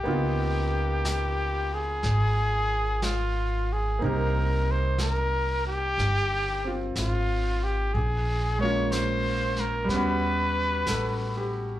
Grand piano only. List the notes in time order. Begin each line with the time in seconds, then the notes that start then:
0.04 A#3 B3 D#4
0.09 F4
3.99 A#3 C4 D#4
4.04 G4
6.64 C4 F4
8.59 G#3 A#3 C#4
8.64 F4
9.85 G3
9.89 B3 C#4
9.96 F#4
10.88 A4
11.37 G4